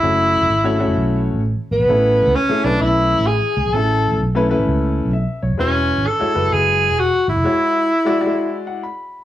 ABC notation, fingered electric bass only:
X:1
M:4/4
L:1/16
Q:"Swing" 1/4=130
K:A
V:1 name="Fingered electric bass" clef=bass
F,,,3 F,,, G,,,3 F,,, B,,,3 A,,,2 z A,,, _B,,, | A,,,3 C,, z2 B,,,2 B,,,3 A,,,2 z C,, _B,,, | A,,,3 A,,, B,,,3 A,,, C,,3 B,,,2 z B,,, =F,,, | E,,,3 G,,, z2 F,,,2 F,,,3 E,,,2 z G,,, =F,,, |
z16 |]